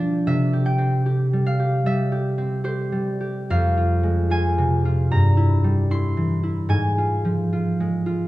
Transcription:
0, 0, Header, 1, 2, 480
1, 0, Start_track
1, 0, Key_signature, -4, "minor"
1, 0, Tempo, 797872
1, 153, Time_signature, 4, 2, 24, 8
1, 1592, Tempo, 862069
1, 2072, Tempo, 805369
1, 4915, End_track
2, 0, Start_track
2, 0, Title_t, "Harp"
2, 0, Program_c, 0, 46
2, 0, Note_on_c, 0, 47, 49
2, 0, Note_on_c, 0, 53, 46
2, 0, Note_on_c, 0, 55, 49
2, 0, Note_on_c, 0, 62, 48
2, 0, Note_on_c, 0, 65, 42
2, 0, Note_on_c, 0, 74, 84
2, 0, Note_on_c, 0, 77, 81
2, 161, Note_on_c, 0, 48, 58
2, 163, Note_on_c, 0, 76, 88
2, 167, Note_off_c, 0, 65, 0
2, 171, Note_off_c, 0, 47, 0
2, 171, Note_off_c, 0, 74, 0
2, 172, Note_off_c, 0, 77, 0
2, 173, Note_off_c, 0, 62, 0
2, 174, Note_off_c, 0, 53, 0
2, 320, Note_on_c, 0, 67, 45
2, 396, Note_on_c, 0, 79, 88
2, 470, Note_on_c, 0, 60, 47
2, 630, Note_off_c, 0, 67, 0
2, 637, Note_on_c, 0, 67, 49
2, 794, Note_off_c, 0, 55, 0
2, 801, Note_on_c, 0, 55, 47
2, 881, Note_on_c, 0, 77, 86
2, 953, Note_off_c, 0, 67, 0
2, 960, Note_on_c, 0, 67, 47
2, 1111, Note_off_c, 0, 76, 0
2, 1112, Note_off_c, 0, 55, 0
2, 1118, Note_on_c, 0, 55, 50
2, 1121, Note_on_c, 0, 76, 84
2, 1268, Note_off_c, 0, 67, 0
2, 1275, Note_on_c, 0, 67, 51
2, 1281, Note_off_c, 0, 77, 0
2, 1424, Note_off_c, 0, 60, 0
2, 1431, Note_on_c, 0, 60, 48
2, 1583, Note_off_c, 0, 67, 0
2, 1589, Note_on_c, 0, 67, 55
2, 1592, Note_on_c, 0, 72, 77
2, 1739, Note_off_c, 0, 55, 0
2, 1746, Note_on_c, 0, 55, 47
2, 1897, Note_off_c, 0, 67, 0
2, 1904, Note_on_c, 0, 67, 49
2, 2069, Note_on_c, 0, 41, 65
2, 2071, Note_on_c, 0, 77, 88
2, 2087, Note_off_c, 0, 67, 0
2, 2090, Note_off_c, 0, 55, 0
2, 2093, Note_off_c, 0, 79, 0
2, 2094, Note_off_c, 0, 76, 0
2, 2097, Note_off_c, 0, 48, 0
2, 2230, Note_on_c, 0, 65, 51
2, 2384, Note_on_c, 0, 56, 48
2, 2540, Note_off_c, 0, 65, 0
2, 2545, Note_on_c, 0, 65, 53
2, 2552, Note_on_c, 0, 80, 91
2, 2710, Note_on_c, 0, 48, 49
2, 2866, Note_off_c, 0, 65, 0
2, 2873, Note_on_c, 0, 65, 51
2, 3029, Note_on_c, 0, 43, 59
2, 3030, Note_on_c, 0, 82, 94
2, 3047, Note_off_c, 0, 56, 0
2, 3050, Note_off_c, 0, 48, 0
2, 3050, Note_off_c, 0, 80, 0
2, 3051, Note_off_c, 0, 65, 0
2, 3052, Note_off_c, 0, 41, 0
2, 3052, Note_off_c, 0, 77, 0
2, 3182, Note_on_c, 0, 64, 53
2, 3343, Note_on_c, 0, 55, 48
2, 3497, Note_off_c, 0, 64, 0
2, 3502, Note_on_c, 0, 64, 53
2, 3504, Note_on_c, 0, 84, 98
2, 3658, Note_on_c, 0, 52, 47
2, 3724, Note_off_c, 0, 60, 0
2, 3808, Note_off_c, 0, 64, 0
2, 3815, Note_on_c, 0, 64, 45
2, 3883, Note_off_c, 0, 72, 0
2, 3967, Note_on_c, 0, 44, 66
2, 3972, Note_on_c, 0, 80, 92
2, 3994, Note_off_c, 0, 55, 0
2, 3994, Note_off_c, 0, 82, 0
2, 3995, Note_off_c, 0, 43, 0
2, 3995, Note_off_c, 0, 52, 0
2, 3995, Note_off_c, 0, 64, 0
2, 4141, Note_on_c, 0, 65, 49
2, 4300, Note_on_c, 0, 53, 46
2, 4460, Note_off_c, 0, 65, 0
2, 4467, Note_on_c, 0, 65, 52
2, 4631, Note_on_c, 0, 56, 48
2, 4778, Note_off_c, 0, 65, 0
2, 4785, Note_on_c, 0, 65, 49
2, 4915, Note_off_c, 0, 44, 0
2, 4915, Note_off_c, 0, 53, 0
2, 4915, Note_off_c, 0, 56, 0
2, 4915, Note_off_c, 0, 65, 0
2, 4915, Note_off_c, 0, 80, 0
2, 4915, Note_off_c, 0, 84, 0
2, 4915, End_track
0, 0, End_of_file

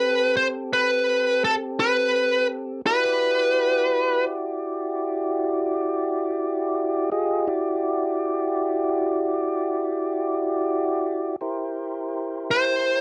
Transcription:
0, 0, Header, 1, 3, 480
1, 0, Start_track
1, 0, Key_signature, 1, "minor"
1, 0, Tempo, 713436
1, 1917, Time_signature, 12, 3, 24, 8
1, 8752, End_track
2, 0, Start_track
2, 0, Title_t, "Lead electric guitar"
2, 0, Program_c, 0, 29
2, 0, Note_on_c, 0, 71, 78
2, 244, Note_off_c, 0, 71, 0
2, 246, Note_on_c, 0, 72, 82
2, 310, Note_off_c, 0, 72, 0
2, 493, Note_on_c, 0, 71, 80
2, 969, Note_off_c, 0, 71, 0
2, 971, Note_on_c, 0, 69, 77
2, 1034, Note_off_c, 0, 69, 0
2, 1210, Note_on_c, 0, 71, 67
2, 1657, Note_off_c, 0, 71, 0
2, 1927, Note_on_c, 0, 71, 91
2, 2855, Note_off_c, 0, 71, 0
2, 8416, Note_on_c, 0, 72, 79
2, 8752, Note_off_c, 0, 72, 0
2, 8752, End_track
3, 0, Start_track
3, 0, Title_t, "Tonewheel organ"
3, 0, Program_c, 1, 16
3, 0, Note_on_c, 1, 60, 53
3, 0, Note_on_c, 1, 67, 65
3, 0, Note_on_c, 1, 69, 58
3, 1893, Note_off_c, 1, 69, 0
3, 1895, Note_off_c, 1, 60, 0
3, 1895, Note_off_c, 1, 67, 0
3, 1924, Note_on_c, 1, 66, 67
3, 1927, Note_on_c, 1, 64, 61
3, 1928, Note_on_c, 1, 67, 62
3, 1930, Note_on_c, 1, 74, 63
3, 4773, Note_off_c, 1, 66, 0
3, 4775, Note_off_c, 1, 64, 0
3, 4775, Note_off_c, 1, 67, 0
3, 4776, Note_off_c, 1, 74, 0
3, 4788, Note_on_c, 1, 68, 59
3, 4789, Note_on_c, 1, 67, 55
3, 4790, Note_on_c, 1, 75, 56
3, 4792, Note_on_c, 1, 65, 56
3, 5024, Note_off_c, 1, 67, 0
3, 5028, Note_on_c, 1, 64, 61
3, 5032, Note_off_c, 1, 68, 0
3, 5032, Note_on_c, 1, 66, 58
3, 5032, Note_on_c, 1, 67, 59
3, 5032, Note_on_c, 1, 74, 63
3, 5033, Note_off_c, 1, 75, 0
3, 5034, Note_off_c, 1, 65, 0
3, 7642, Note_off_c, 1, 64, 0
3, 7643, Note_off_c, 1, 67, 0
3, 7643, Note_off_c, 1, 74, 0
3, 7644, Note_off_c, 1, 66, 0
3, 7675, Note_on_c, 1, 67, 57
3, 7676, Note_on_c, 1, 72, 62
3, 7681, Note_on_c, 1, 70, 64
3, 7683, Note_on_c, 1, 64, 63
3, 8752, Note_off_c, 1, 64, 0
3, 8752, Note_off_c, 1, 67, 0
3, 8752, Note_off_c, 1, 70, 0
3, 8752, Note_off_c, 1, 72, 0
3, 8752, End_track
0, 0, End_of_file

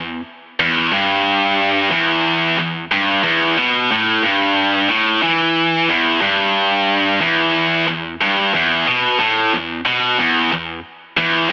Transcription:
0, 0, Header, 1, 2, 480
1, 0, Start_track
1, 0, Tempo, 662252
1, 431, Time_signature, 4, 2, 24, 8
1, 8351, End_track
2, 0, Start_track
2, 0, Title_t, "Distorted electric guitar"
2, 0, Program_c, 0, 30
2, 0, Note_on_c, 0, 40, 77
2, 144, Note_off_c, 0, 40, 0
2, 433, Note_on_c, 0, 40, 99
2, 664, Note_off_c, 0, 40, 0
2, 672, Note_on_c, 0, 43, 99
2, 1380, Note_off_c, 0, 43, 0
2, 1382, Note_on_c, 0, 40, 104
2, 1859, Note_off_c, 0, 40, 0
2, 1870, Note_on_c, 0, 40, 77
2, 2062, Note_off_c, 0, 40, 0
2, 2113, Note_on_c, 0, 43, 110
2, 2343, Note_off_c, 0, 43, 0
2, 2346, Note_on_c, 0, 40, 104
2, 2581, Note_off_c, 0, 40, 0
2, 2592, Note_on_c, 0, 47, 103
2, 2824, Note_off_c, 0, 47, 0
2, 2837, Note_on_c, 0, 45, 107
2, 3063, Note_on_c, 0, 43, 103
2, 3067, Note_off_c, 0, 45, 0
2, 3540, Note_off_c, 0, 43, 0
2, 3541, Note_on_c, 0, 45, 103
2, 3779, Note_off_c, 0, 45, 0
2, 3786, Note_on_c, 0, 52, 105
2, 4262, Note_off_c, 0, 52, 0
2, 4267, Note_on_c, 0, 40, 105
2, 4500, Note_off_c, 0, 40, 0
2, 4503, Note_on_c, 0, 43, 92
2, 5220, Note_off_c, 0, 43, 0
2, 5223, Note_on_c, 0, 40, 100
2, 5698, Note_off_c, 0, 40, 0
2, 5707, Note_on_c, 0, 40, 79
2, 5901, Note_off_c, 0, 40, 0
2, 5950, Note_on_c, 0, 43, 105
2, 6184, Note_off_c, 0, 43, 0
2, 6190, Note_on_c, 0, 40, 104
2, 6424, Note_off_c, 0, 40, 0
2, 6427, Note_on_c, 0, 47, 100
2, 6658, Note_off_c, 0, 47, 0
2, 6661, Note_on_c, 0, 45, 106
2, 6899, Note_off_c, 0, 45, 0
2, 6906, Note_on_c, 0, 40, 77
2, 7101, Note_off_c, 0, 40, 0
2, 7144, Note_on_c, 0, 47, 102
2, 7377, Note_on_c, 0, 40, 101
2, 7381, Note_off_c, 0, 47, 0
2, 7616, Note_off_c, 0, 40, 0
2, 7624, Note_on_c, 0, 40, 75
2, 7820, Note_off_c, 0, 40, 0
2, 8096, Note_on_c, 0, 40, 112
2, 8328, Note_off_c, 0, 40, 0
2, 8351, End_track
0, 0, End_of_file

